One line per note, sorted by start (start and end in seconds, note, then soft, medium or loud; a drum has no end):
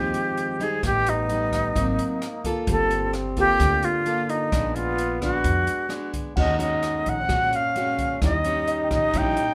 0.00 0.12 D#2 medium
0.00 0.81 D#3 soft
0.00 0.56 F3 soft
0.00 0.79 G#3 medium
0.00 0.56 C4 soft
0.00 0.57 D#4 medium
0.00 0.65 G4 medium
0.00 0.27 C5 medium
0.14 closed hi-hat soft
0.37 closed hi-hat soft
0.60 1.25 G3 soft
0.60 1.26 D#4 medium
0.60 0.85 G#4 medium
0.60 1.03 D#5 soft
0.60 closed hi-hat soft
0.83 1.71 A1 medium
0.83 1.74 A2 medium
0.83 1.77 B3 loud
0.83 1.11 G4 loud
0.83 kick medium
0.83 cross-stick medium
0.83 closed hi-hat medium
1.06 2.46 D#4 medium
1.06 closed hi-hat soft
1.29 1.72 G3 medium
1.29 1.73 D#4 medium
1.29 closed hi-hat soft
1.52 kick soft
1.52 cross-stick medium
1.52 closed hi-hat soft
1.75 1.97 G#1 medium
1.75 2.65 G#2 soft
1.75 2.21 F#3 soft
1.75 2.67 A#3 loud
1.75 2.21 A#3 soft
1.75 2.21 C4 medium
1.75 kick medium
1.75 closed hi-hat medium
1.99 closed hi-hat soft
2.22 cross-stick medium
2.22 closed hi-hat soft
2.44 3.10 A#3 medium
2.44 3.11 F4 medium
2.44 3.11 A4 medium
2.44 kick medium
2.44 closed hi-hat soft
2.67 3.56 G1 loud
2.67 3.58 G3 medium
2.67 4.21 C4 loud
2.67 3.12 A4 loud
2.67 kick medium
2.67 closed hi-hat medium
2.90 closed hi-hat soft
3.13 cross-stick medium
3.13 closed hi-hat soft
3.37 4.03 A#3 medium
3.37 4.03 F4 soft
3.37 3.86 G4 loud
3.37 4.03 A4 medium
3.37 kick medium
3.37 closed hi-hat soft
3.60 3.81 D2 medium
3.60 4.50 D3 soft
3.60 kick medium
3.60 cross-stick medium
3.60 closed hi-hat medium
3.83 4.31 F4 medium
3.83 4.71 F5 soft
3.83 closed hi-hat soft
4.06 4.49 A#3 medium
4.06 4.49 F4 medium
4.06 4.49 A4 medium
4.06 closed hi-hat soft
4.29 4.76 D#4 medium
4.29 closed hi-hat soft
4.51 5.41 A#1 loud
4.51 5.43 A#2 medium
4.51 4.98 G#3 medium
4.51 6.09 B3 loud
4.51 4.99 B3 medium
4.51 4.99 D4 medium
4.51 kick medium
4.51 cross-stick medium
4.51 closed hi-hat medium
4.75 5.21 F4 medium
4.75 closed hi-hat soft
4.98 closed hi-hat soft
5.21 5.87 G#3 medium
5.21 5.87 B3 medium
5.21 5.88 D4 medium
5.21 6.11 F#4 medium
5.21 kick medium
5.21 cross-stick medium
5.21 closed hi-hat soft
5.44 5.66 F2 medium
5.44 kick medium
5.44 closed hi-hat medium
5.67 closed hi-hat soft
5.89 6.32 G#3 medium
5.89 6.33 B3 soft
5.89 6.33 D4 medium
5.89 cross-stick medium
5.89 closed hi-hat soft
6.14 kick medium
6.14 closed hi-hat soft
6.36 7.02 D#2 medium
6.36 7.27 D#3 medium
6.36 6.56 G#3 soft
6.36 6.56 C#4 medium
6.36 7.23 D#4 loud
6.36 6.57 F#4 medium
6.36 6.60 D#5 medium
6.36 7.65 F#5 soft
6.36 kick medium
6.36 crash medium
6.59 7.25 G#3 medium
6.59 7.25 C#4 medium
6.59 7.25 F#4 medium
6.59 7.11 D#5 medium
6.59 closed hi-hat soft
6.83 cross-stick medium
6.83 closed hi-hat soft
7.06 7.28 A#1 medium
7.06 7.57 F#5 loud
7.06 closed hi-hat soft
7.22 7.31 C4 medium
7.28 7.51 A#1 medium
7.28 8.19 A#2 medium
7.28 7.58 G#3 soft
7.28 7.59 C#4 soft
7.28 8.23 C#4 loud
7.28 7.59 F#4 medium
7.28 kick medium
7.28 cross-stick medium
7.28 closed hi-hat medium
7.53 8.23 F5 medium
7.53 closed hi-hat soft
7.76 8.20 G#3 medium
7.76 8.20 C#4 medium
7.76 8.21 F#4 medium
7.76 closed hi-hat soft
7.99 kick medium
7.99 closed hi-hat soft
8.22 8.87 D#2 medium
8.22 9.12 D#3 medium
8.22 8.35 G3 medium
8.22 8.36 C#4 medium
8.22 9.54 D#4 loud
8.22 8.36 E4 medium
8.22 8.88 D#5 medium
8.22 kick medium
8.22 cross-stick medium
8.22 closed hi-hat medium
8.44 9.11 G3 medium
8.44 9.11 C#4 medium
8.44 closed hi-hat soft
8.67 9.54 D#5 medium
8.67 closed hi-hat soft
8.84 9.54 G5 soft
8.91 9.12 A#1 medium
8.91 9.19 D#5 medium
8.91 kick medium
8.91 cross-stick medium
8.91 closed hi-hat soft
9.14 9.35 A#1 medium
9.14 9.54 A#2 soft
9.14 9.44 G3 soft
9.14 9.44 C#4 medium
9.14 9.45 E4 medium
9.14 kick medium
9.14 closed hi-hat medium
9.18 9.54 G5 medium
9.37 closed hi-hat soft